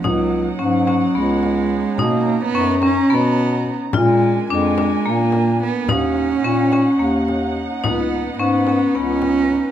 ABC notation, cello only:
X:1
M:7/8
L:1/16
Q:1/4=108
K:Dbmix
V:1 name="Cello"
G,4 G,4 A,6 | ^A,3 =B,3 D2 B,4 z2 | A,4 A,4 B,4 C2 | D12 z2 |
C4 C4 D6 |]